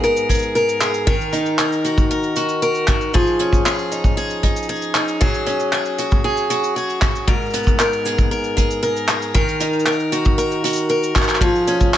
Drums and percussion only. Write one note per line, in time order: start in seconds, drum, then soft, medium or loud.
0.04 cabasa medium
0.17 cabasa soft
0.29 kick medium
0.29 closed hi-hat medium
0.29 cabasa medium
0.34 cabasa medium
0.39 cabasa medium
0.42 cabasa medium
0.56 cabasa soft
0.69 cabasa soft
0.81 clap medium
0.81 closed hi-hat medium
0.81 cabasa medium
0.94 cabasa soft
1.07 kick loud
1.07 cabasa medium
1.21 cabasa soft
1.33 closed hi-hat medium
1.33 cabasa medium
1.46 cabasa soft
1.59 clap medium
1.59 cabasa medium
1.72 cabasa soft
1.85 closed hi-hat medium
1.85 cabasa medium
1.98 kick medium
1.98 cabasa soft
2.11 cabasa medium
2.23 cabasa soft
2.36 closed hi-hat loud
2.36 cabasa medium
2.49 cabasa soft
2.62 cabasa medium
2.75 cabasa soft
2.87 kick loud
2.87 clap medium
2.87 closed hi-hat medium
2.87 cabasa medium
3.01 cabasa soft
3.14 kick loud
3.14 cabasa medium
3.27 cabasa soft
3.39 closed hi-hat medium
3.39 cabasa medium
3.53 kick medium
3.53 cabasa soft
3.66 clap medium
3.66 cabasa medium
3.79 cabasa soft
3.92 cabasa medium
4.04 kick medium
4.04 cabasa soft
4.18 cabasa medium
4.30 cabasa soft
4.43 kick medium
4.43 closed hi-hat loud
4.56 cabasa soft
4.63 cabasa soft
4.69 cabasa medium
4.75 cabasa soft
4.82 cabasa soft
4.95 clap medium
4.95 closed hi-hat medium
4.95 cabasa medium
5.08 cabasa soft
5.21 kick loud
5.21 cabasa medium
5.34 cabasa soft
5.47 closed hi-hat medium
5.60 cabasa soft
5.73 clap medium
5.73 cabasa medium
5.85 cabasa soft
5.98 closed hi-hat medium
5.98 cabasa medium
6.11 kick medium
6.11 cabasa soft
6.37 cabasa soft
6.50 closed hi-hat loud
6.50 cabasa medium
6.64 cabasa medium
6.77 cabasa medium
6.90 cabasa soft
7.02 kick loud
7.02 clap medium
7.02 closed hi-hat medium
7.02 cabasa medium
7.15 cabasa soft
7.28 kick loud
7.28 cabasa medium
7.42 cabasa soft
7.46 cabasa soft
7.50 closed hi-hat medium
7.50 cabasa soft
7.54 cabasa medium
7.54 cabasa soft
7.63 kick medium
7.63 cabasa soft
7.67 cabasa soft
7.80 clap medium
7.80 cabasa medium
7.93 cabasa soft
8.05 closed hi-hat medium
8.05 cabasa medium
8.18 kick medium
8.18 cabasa soft
8.32 cabasa medium
8.44 cabasa soft
8.57 kick medium
8.57 closed hi-hat loud
8.57 cabasa medium
8.71 cabasa soft
8.83 cabasa medium
8.96 cabasa soft
9.08 clap medium
9.08 closed hi-hat medium
9.08 cabasa medium
9.22 cabasa soft
9.35 kick medium
9.35 cabasa medium
9.48 cabasa soft
9.60 closed hi-hat loud
9.60 cabasa medium
9.73 cabasa soft
9.79 cabasa soft
9.86 clap medium
9.86 cabasa soft
9.86 cabasa medium
9.92 cabasa soft
10.00 cabasa soft
10.12 closed hi-hat medium
10.12 cabasa medium
10.25 kick medium
10.25 cabasa soft
10.39 cabasa medium
10.51 cabasa soft
10.65 closed hi-hat loud
10.65 cabasa soft
10.68 cabasa soft
10.70 cabasa medium
10.73 cabasa medium
10.75 cabasa medium
10.78 cabasa soft
10.89 cabasa medium
11.03 cabasa soft
11.16 kick medium
11.16 clap medium
11.16 closed hi-hat medium
11.16 cabasa medium
11.22 clap medium
11.29 clap soft
11.29 cabasa soft
11.35 clap soft
11.41 kick loud
11.41 cabasa medium
11.55 cabasa soft
11.67 closed hi-hat medium
11.67 cabasa medium
11.80 kick medium
11.80 cabasa medium
11.93 clap medium
11.93 cabasa medium